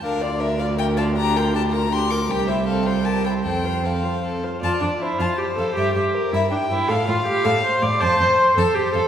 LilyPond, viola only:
\new Staff \with { instrumentName = "Viola" } { \time 3/4 \key f \major \tempo 4 = 160 d'8 f'8 d'8 f'8 d'8 f'8 | d'8 f'8 d'8 f'8 d'8 f'8 | g'8 e'8 c'8 f'8 g'8 e'8 | c'8 f'8 c'8 f'8 c'8 f'8 |
f'8 d'8 e'8 f'8 g'8 a'8 | g'8 g'4 e'8 d'8 e'8 | a'8 f'8 g'8 a'8 c''8 d''8 | c''8 c''4 a'8 g'8 a'8 | }